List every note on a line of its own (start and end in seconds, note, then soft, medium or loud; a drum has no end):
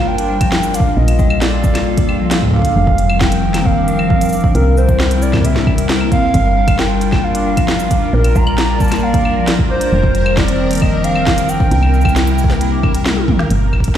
0.00 0.95 G1 medium
0.00 0.95 G3 medium
0.00 0.95 D4 medium
0.00 0.95 F4 medium
0.00 0.95 A#4 medium
0.07 0.16 G3 medium
0.07 0.76 G5 loud
0.18 0.27 D4 medium
0.18 closed hi-hat medium
0.30 0.40 G3 loud
0.41 0.51 F3 loud
0.41 kick loud
0.41 closed hi-hat loud
0.41 claves medium
0.52 0.62 G3 medium
0.52 snare loud
0.63 0.72 G3 medium
0.63 cabasa medium
0.74 0.84 D4 medium
0.74 0.96 F5 loud
0.74 closed hi-hat medium
0.74 cabasa medium
0.80 kick loud
0.86 0.94 D4 medium
0.97 2.74 A#1 medium
0.97 1.05 G3 medium
0.97 2.74 A#3 medium
0.97 2.74 F4 medium
0.97 2.74 A4 medium
0.97 1.43 D#5 loud
0.97 2.74 F5 medium
1.08 1.17 G3 medium
1.08 closed hi-hat loud
1.08 claves soft
1.19 1.29 G3 loud
1.19 kick loud
1.19 cabasa medium
1.30 1.39 G3 medium
1.30 claves medium
1.41 1.50 G3 medium
1.41 2.31 D5 medium
1.41 snare loud
1.41 closed hi-hat medium
1.53 1.61 G3 medium
1.64 1.75 G3 medium
1.64 kick loud
1.64 cabasa medium
1.75 1.84 A#3 medium
1.75 snare medium
1.75 closed hi-hat medium
1.75 claves medium
1.86 1.95 G3 medium
1.98 2.06 D4 medium
1.98 kick loud
1.98 closed hi-hat medium
2.09 2.19 G3 loud
2.09 claves medium
2.20 2.31 F3 loud
2.31 2.41 G3 medium
2.31 snare loud
2.31 closed hi-hat medium
2.42 2.51 G3 medium
2.42 kick soft
2.45 kick medium
2.48 kick medium
2.51 2.63 D4 medium
2.51 kick medium
2.54 3.22 F5 loud
2.54 kick medium
2.56 kick medium
2.59 kick medium
2.62 2.73 D4 medium
2.62 kick medium
2.62 closed hi-hat loud
2.76 4.53 F1 medium
2.76 4.53 D#3 medium
2.76 4.53 F3 medium
2.76 2.84 G3 medium
2.76 6.31 C4 medium
2.76 8.09 A#4 medium
2.87 2.96 G3 medium
2.87 kick loud
2.98 3.08 G3 loud
2.98 closed hi-hat medium
3.09 3.18 G3 medium
3.09 claves medium
3.21 3.29 G3 medium
3.21 3.67 G5 loud
3.21 kick loud
3.21 snare loud
3.32 3.40 G3 medium
3.32 closed hi-hat medium
3.43 3.54 G3 medium
3.54 3.63 A#3 medium
3.54 snare medium
3.54 closed hi-hat medium
3.54 claves soft
3.65 3.74 G3 medium
3.65 4.54 F5 loud
3.65 kick loud
3.77 3.85 D4 medium
3.88 3.98 G3 loud
3.88 closed hi-hat medium
3.99 4.10 F3 loud
3.99 claves medium
4.10 4.20 G3 medium
4.10 kick loud
4.21 4.30 G3 medium
4.21 closed hi-hat medium
4.21 cabasa medium
4.25 cabasa medium
4.29 4.43 D4 medium
4.29 cabasa soft
4.33 cabasa medium
4.36 cabasa soft
4.40 4.52 D4 medium
4.40 kick loud
4.40 cabasa soft
4.55 6.32 C2 medium
4.55 6.32 C3 medium
4.55 4.64 G3 medium
4.55 6.32 E4 medium
4.55 4.79 A#4 loud
4.55 closed hi-hat medium
4.66 4.75 G3 medium
4.77 4.87 G3 loud
4.77 5.24 C5 loud
4.77 cabasa medium
4.89 4.97 G3 medium
4.89 kick loud
4.89 closed hi-hat medium
5.00 5.08 G3 medium
5.00 snare loud
5.11 5.20 G3 medium
5.11 closed hi-hat medium
5.22 5.33 G3 medium
5.22 5.46 D5 medium
5.22 cabasa medium
5.33 5.42 A#3 medium
5.33 kick loud
5.33 snare medium
5.33 claves soft
5.36 kick medium
5.39 kick medium
5.42 kick medium
5.45 5.53 G3 medium
5.45 5.89 E5 medium
5.45 kick soft
5.45 closed hi-hat medium
5.47 kick soft
5.50 kick soft
5.53 5.64 D4 medium
5.53 kick soft
5.53 snare medium
5.67 5.75 G3 medium
5.67 kick loud
5.67 claves soft
5.78 5.87 G3 medium
5.78 closed hi-hat medium
5.89 5.98 G3 loud
5.89 snare loud
6.00 6.11 A#3 loud
6.00 claves soft
6.12 6.22 C4 medium
6.12 6.80 F5 loud
6.12 kick loud
6.12 closed hi-hat medium
6.23 6.31 G3 medium
6.34 8.11 G1 medium
6.34 6.43 G3 medium
6.34 8.11 G3 medium
6.34 8.11 D4 medium
6.34 9.89 F4 medium
6.34 13.49 A#4 medium
6.34 kick loud
6.34 closed hi-hat medium
6.45 6.54 G3 medium
6.56 6.66 G3 loud
6.68 6.76 G3 medium
6.68 kick loud
6.68 closed hi-hat medium
6.68 claves medium
6.79 6.87 G3 medium
6.79 7.25 G5 loud
6.79 snare loud
6.90 6.99 G3 medium
7.01 7.12 G3 medium
7.01 closed hi-hat medium
7.12 7.21 A#3 medium
7.12 kick loud
7.12 snare medium
7.12 claves soft
7.24 7.32 G3 medium
7.24 8.15 F5 loud
7.35 7.43 D4 medium
7.35 closed hi-hat medium
7.46 7.57 G3 loud
7.57 7.68 F3 loud
7.57 kick loud
7.57 closed hi-hat medium
7.57 claves medium
7.68 7.78 G3 medium
7.68 snare loud
7.80 7.88 G3 medium
7.80 cabasa medium
7.91 8.01 D4 medium
7.91 kick loud
7.91 closed hi-hat medium
7.91 cabasa medium
8.02 8.11 D4 medium
8.13 9.90 A#1 medium
8.13 8.22 G3 medium
8.13 9.91 A#3 medium
8.13 9.91 A#4 medium
8.13 8.37 A#4 loud
8.13 9.91 D5 medium
8.24 8.33 G3 medium
8.24 closed hi-hat medium
8.24 claves soft
8.36 8.46 G3 loud
8.36 8.82 A#5 loud
8.36 kick loud
8.36 cabasa medium
8.47 8.55 G3 medium
8.47 claves medium
8.58 8.67 G3 medium
8.58 snare loud
8.58 closed hi-hat medium
8.69 8.78 G3 medium
8.80 8.91 G3 medium
8.80 9.04 A5 loud
8.80 kick loud
8.80 cabasa medium
8.84 cabasa medium
8.88 9.00 A#3 medium
8.88 snare medium
8.88 closed hi-hat medium
8.88 cabasa medium
8.92 cabasa soft
8.92 claves medium
8.95 cabasa soft
8.99 9.11 G3 medium
8.99 9.48 F5 loud
8.99 cabasa soft
9.14 9.23 D4 medium
9.14 kick loud
9.14 closed hi-hat medium
9.25 9.36 G3 loud
9.25 claves medium
9.36 9.47 F3 loud
9.48 9.58 G3 medium
9.48 snare loud
9.48 closed hi-hat medium
9.59 9.67 G3 medium
9.59 kick loud
9.70 9.80 D4 medium
9.70 10.39 C5 medium
9.81 9.90 D4 medium
9.81 closed hi-hat medium
9.92 11.69 F1 medium
9.92 11.70 D#3 medium
9.92 11.70 F3 medium
9.92 10.01 G3 medium
9.92 13.47 C4 medium
9.92 13.47 A#4 medium
10.03 10.12 G3 medium
10.03 kick loud
10.15 10.25 G3 loud
10.15 closed hi-hat medium
10.26 10.34 G3 medium
10.26 claves medium
10.37 10.46 G3 medium
10.37 10.83 D5 loud
10.37 kick loud
10.37 snare loud
10.48 10.57 G3 medium
10.48 closed hi-hat medium
10.59 10.70 G3 medium
10.71 10.79 A#3 medium
10.71 closed hi-hat medium
10.73 closed hi-hat medium
10.75 closed hi-hat medium
10.77 closed hi-hat soft
10.80 10.90 G3 medium
10.80 11.06 D#5 loud
10.80 kick loud
10.80 closed hi-hat soft
10.80 claves medium
10.93 11.02 D4 medium
11.04 11.15 G3 loud
11.04 11.50 F5 loud
11.04 closed hi-hat medium
11.15 11.26 F3 loud
11.15 claves medium
11.27 11.37 G3 medium
11.27 kick loud
11.27 snare loud
11.38 11.46 G3 medium
11.38 closed hi-hat medium
11.38 cabasa medium
11.49 11.59 D4 medium
11.49 13.06 G5 loud
11.49 cabasa medium
11.60 11.69 D4 medium
11.60 kick loud
11.71 13.48 C2 medium
11.71 13.49 C3 medium
11.71 11.80 G3 medium
11.71 13.49 E4 medium
11.71 closed hi-hat medium
11.83 11.91 G3 medium
11.83 claves soft
11.94 12.04 G3 loud
11.94 cabasa soft
12.01 12.14 G3 medium
12.01 kick loud
12.01 cabasa soft
12.01 claves medium
12.09 cabasa soft
12.16 12.25 G3 medium
12.16 snare loud
12.16 cabasa medium
12.27 12.36 G3 medium
12.27 closed hi-hat medium
12.39 12.49 G3 medium
12.39 cabasa medium
12.44 kick loud
12.50 12.58 A#3 medium
12.50 snare medium
12.61 12.70 G3 medium
12.61 closed hi-hat medium
12.72 12.81 D4 medium
12.83 12.93 G3 medium
12.83 kick loud
12.83 claves medium
12.95 13.03 G3 medium
12.95 closed hi-hat loud
13.06 13.11 G3 loud
13.06 snare loud
13.06 high tom medium
13.17 13.25 G3 medium
13.17 high tom medium
13.28 13.37 E4 loud
13.28 kick loud
13.28 mid tom medium
13.39 13.48 G3 medium
13.39 snare medium
13.50 13.97 G1 medium
13.50 13.97 A#4 medium
13.50 closed hi-hat medium
13.73 kick soft
13.73 claves medium
13.80 kick medium
13.80 closed hi-hat medium
13.88 kick medium